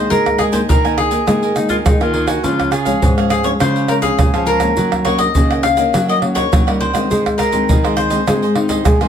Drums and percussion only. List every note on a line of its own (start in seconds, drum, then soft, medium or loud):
0.11 pandeiro medium
0.11 shaker medium
0.11 surdo medium
0.26 pandeiro soft
0.26 tamborim medium
0.26 shaker soft
0.26 surdo soft
0.39 pandeiro medium
0.39 tamborim medium
0.39 shaker medium
0.39 surdo soft
0.53 pandeiro medium
0.53 shaker medium
0.53 surdo soft
0.70 pandeiro medium
0.70 shaker medium
0.70 surdo loud
0.85 pandeiro soft
0.85 tamborim medium
0.85 shaker soft
0.98 pandeiro medium
0.98 tamborim medium
1.11 pandeiro medium
1.11 shaker medium
1.27 pandeiro medium
1.27 tamborim medium
1.27 shaker medium
1.27 surdo medium
1.43 pandeiro soft
1.43 shaker soft
1.56 pandeiro medium
1.56 tamborim medium
1.56 shaker medium
1.69 pandeiro medium
1.69 shaker medium
1.69 surdo soft
1.86 pandeiro medium
1.86 tamborim medium
1.86 shaker medium
1.86 surdo loud
2.01 pandeiro soft
2.01 tamborim medium
2.01 shaker soft
2.14 pandeiro medium
2.28 pandeiro medium
2.28 tamborim medium
2.28 shaker medium
2.28 surdo soft
2.44 pandeiro medium
2.44 shaker medium
2.44 surdo medium
2.60 pandeiro soft
2.60 tamborim medium
2.60 shaker soft
2.60 surdo soft
2.72 pandeiro medium
2.72 tamborim medium
2.72 shaker medium
2.86 pandeiro medium
2.86 shaker medium
2.86 surdo soft
3.02 pandeiro medium
3.02 shaker medium
3.02 surdo medium
3.18 pandeiro soft
3.18 tamborim medium
3.18 shaker soft
3.30 pandeiro medium
3.30 tamborim medium
3.30 shaker medium
3.44 pandeiro medium
3.44 shaker medium
3.60 pandeiro medium
3.60 tamborim medium
3.60 shaker medium
3.60 surdo medium
3.76 pandeiro soft
3.76 shaker soft
3.88 pandeiro medium
3.88 tamborim medium
3.88 shaker medium
4.02 pandeiro medium
4.02 shaker medium
4.02 surdo soft
4.19 pandeiro medium
4.19 tamborim medium
4.19 shaker medium
4.19 surdo loud
4.34 pandeiro soft
4.34 tamborim medium
4.34 shaker soft
4.46 pandeiro medium
4.46 shaker medium
4.60 pandeiro medium
4.60 tamborim medium
4.60 shaker medium
4.60 surdo soft
4.77 pandeiro medium
4.77 shaker medium
4.77 surdo medium
4.92 pandeiro soft
4.92 tamborim loud
4.92 shaker soft
4.92 surdo soft
5.05 pandeiro medium
5.05 tamborim medium
5.05 surdo soft
5.19 pandeiro medium
5.19 shaker medium
5.19 surdo soft
5.35 pandeiro medium
5.35 shaker medium
5.35 surdo medium
5.51 pandeiro soft
5.51 tamborim medium
5.51 shaker soft
5.63 pandeiro medium
5.63 tamborim medium
5.63 shaker medium
5.77 pandeiro medium
5.77 shaker medium
5.94 pandeiro medium
5.94 tamborim medium
5.94 shaker medium
5.94 surdo medium
6.10 pandeiro soft
6.10 shaker soft
6.22 pandeiro medium
6.22 tamborim medium
6.36 pandeiro medium
6.36 shaker medium
6.36 surdo soft
6.53 pandeiro loud
6.53 tamborim medium
6.53 shaker medium
6.53 surdo loud
6.68 pandeiro soft
6.68 tamborim medium
6.68 shaker soft
6.81 pandeiro medium
6.95 pandeiro medium
6.95 tamborim medium
6.95 shaker medium
6.95 surdo soft
7.11 pandeiro medium
7.11 shaker medium
7.11 surdo medium
7.26 pandeiro soft
7.26 tamborim medium
7.26 shaker soft
7.26 surdo soft
7.39 pandeiro medium
7.39 tamborim medium
7.39 shaker medium
7.39 surdo soft
7.52 pandeiro medium
7.52 shaker medium
7.52 surdo soft
7.69 pandeiro medium
7.69 shaker medium
7.69 surdo medium
7.85 pandeiro soft
7.85 tamborim medium
7.85 shaker soft
7.97 pandeiro medium
7.97 tamborim medium
7.97 shaker medium
8.10 pandeiro medium
8.10 shaker medium
8.27 pandeiro medium
8.27 tamborim medium
8.27 shaker medium
8.27 surdo medium
8.43 pandeiro soft
8.43 shaker soft
8.55 pandeiro medium
8.55 tamborim medium
8.69 pandeiro medium
8.69 shaker medium
8.69 surdo soft
8.85 pandeiro medium
8.85 tamborim medium
8.85 shaker loud
8.85 surdo loud
9.01 pandeiro soft
9.01 tamborim medium
9.01 shaker soft